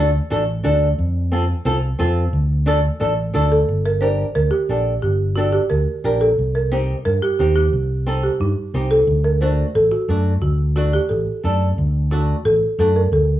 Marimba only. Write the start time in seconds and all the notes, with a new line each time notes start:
3.52 A4
3.85 A#4
4.01 C5
4.35 A#4
4.51 G4
5.02 G4
5.36 F#4
5.53 G4
5.70 A#4
6.21 A4
6.55 A#4
6.72 C5
7.05 A#4
7.22 G4
7.39 G4
7.56 G4
8.23 G4
8.41 D#4
8.91 A4
9.24 A#4
9.41 C5
9.75 A4
9.92 F#4
10.42 F#4
10.76 F#4
10.93 G4
11.09 A4
12.11 F#4
12.45 A4
12.79 A4
12.96 A#4
13.13 A4